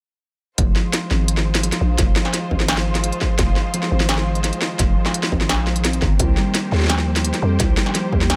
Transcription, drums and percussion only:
0.58 kick, closed hi-hat
0.76 snare
0.93 snare, closed hi-hat
1.11 snare
1.28 closed hi-hat
1.37 snare
1.55 snare, closed hi-hat
1.63 closed hi-hat
1.72 snare, closed hi-hat
1.98 kick, snare, closed hi-hat
2.16 snare
2.25 snare
2.34 snare, closed hi-hat
2.51 kick
2.60 snare
2.68 snare, closed hi-hat
2.77 snare
2.95 snare, closed hi-hat
3.04 closed hi-hat
3.12 closed hi-hat
3.21 kick, snare
3.39 kick, snare, closed hi-hat
3.56 snare
3.74 closed hi-hat
3.83 snare
4.00 snare
4.09 snare, closed hi-hat
4.18 snare
4.35 closed hi-hat
4.44 snare, closed hi-hat
4.53 closed hi-hat
4.62 snare
4.79 kick, snare, closed hi-hat
5.06 snare
5.14 closed hi-hat
5.23 snare
5.32 kick
5.41 snare
5.49 snare, closed hi-hat
5.67 snare
5.76 closed hi-hat
5.85 snare, closed hi-hat
5.93 closed hi-hat
6.02 kick, snare
6.19 kick, closed hi-hat
6.37 snare
6.55 snare, closed hi-hat
6.72 snare
6.75 snare
6.77 snare
6.80 snare
6.82 snare
6.85 snare
6.87 snare
6.89 snare, closed hi-hat
6.98 snare
7.16 snare, closed hi-hat
7.25 closed hi-hat
7.34 snare, closed hi-hat
7.60 kick, snare, closed hi-hat
7.77 snare
7.86 snare
7.95 snare, closed hi-hat
8.13 kick
8.21 snare
8.30 snare, closed hi-hat

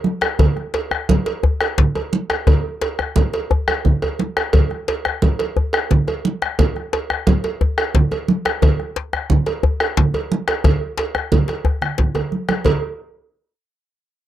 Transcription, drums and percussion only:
0.04 high conga
0.21 bombo rim, cowbell, djembe slap
0.39 bombo low, cowbell, djembe tone, djembe bass, low conga
0.57 bombo rim, high conga
0.74 cowbell, djembe slap
0.91 bombo rim, djembe tone
1.09 bombo low, cowbell, high conga, low conga
1.26 cowbell, djembe slap, high conga
1.43 djembe slap, djembe tone, high conga, djembe bass
1.61 bombo rim, cowbell, djembe slap
1.78 bombo low, djembe slap, low conga
1.95 cowbell, djembe tone, high conga
2.13 high conga
2.30 bombo rim, cowbell, djembe slap
2.47 bombo rim, bombo low, cowbell, djembe tone, djembe bass, low conga
2.81 bombo rim, cowbell, djembe slap
2.99 bombo rim, djembe slap, djembe tone
3.16 bombo rim, bombo low, cowbell, high conga, low conga
3.33 cowbell, djembe slap
3.50 djembe slap, high conga, djembe tone, djembe bass
3.68 bombo rim, cowbell, high conga, djembe bass
3.85 bombo low, low conga, djembe bass
4.02 bombo rim, cowbell, djembe bass
4.19 djembe slap, high conga
4.37 bombo rim, cowbell, djembe slap
4.53 bombo low, cowbell, djembe tone, low conga, djembe bass
4.70 bombo rim, high conga
4.88 cowbell, djembe slap
5.05 bombo rim, djembe tone
5.22 bombo low, cowbell, high conga, low conga
5.39 cowbell, djembe slap, high conga
5.57 djembe slap, djembe tone, high conga, djembe bass
5.73 bombo rim, cowbell, djembe slap
5.91 bombo low, djembe slap, low conga
6.08 cowbell, djembe tone, high conga
6.25 high conga
6.42 bombo rim, djembe slap
6.59 bombo low, cowbell, djembe tone, djembe bass, low conga
6.76 bombo rim, high conga
6.93 cowbell, djembe slap
7.10 bombo rim, djembe tone
7.27 bombo low, cowbell, high conga, low conga
7.44 cowbell, djembe slap, high conga
7.61 djembe slap, djembe tone, high conga, djembe bass
7.78 bombo rim, cowbell, djembe slap
7.95 bombo low, djembe slap, low conga
8.11 cowbell, high conga, djembe tone
8.28 high conga
8.45 bombo rim, cowbell, djembe slap
8.62 bombo low, cowbell, djembe tone, low conga, djembe bass
8.80 bombo rim, high conga
8.96 djembe slap
9.13 bombo rim, djembe tone
9.30 bombo low, high conga, low conga
9.46 cowbell, djembe slap, high conga
9.63 djembe slap, djembe tone, high conga, djembe bass
9.80 bombo rim, cowbell
9.97 bombo low, djembe slap, low conga
10.14 cowbell, djembe tone, high conga
10.32 high conga
10.48 bombo rim, cowbell, djembe slap
10.64 bombo low, cowbell, djembe tone, high conga, djembe bass, low conga
10.98 bombo rim, cowbell, djembe slap
11.15 bombo rim, djembe slap, djembe tone
11.32 bombo low, cowbell, djembe slap, high conga, low conga
11.48 bombo rim, cowbell, djembe slap, high conga
11.65 bombo rim, djembe tone, djembe bass
11.82 bombo rim, low conga
11.98 bombo rim, bombo low, djembe slap, low conga
12.15 bombo rim, cowbell, djembe slap, djembe tone, low conga
12.32 djembe slap, high conga
12.49 bombo rim, cowbell, djembe slap, high conga
12.65 bombo low, cowbell, low conga, djembe bass

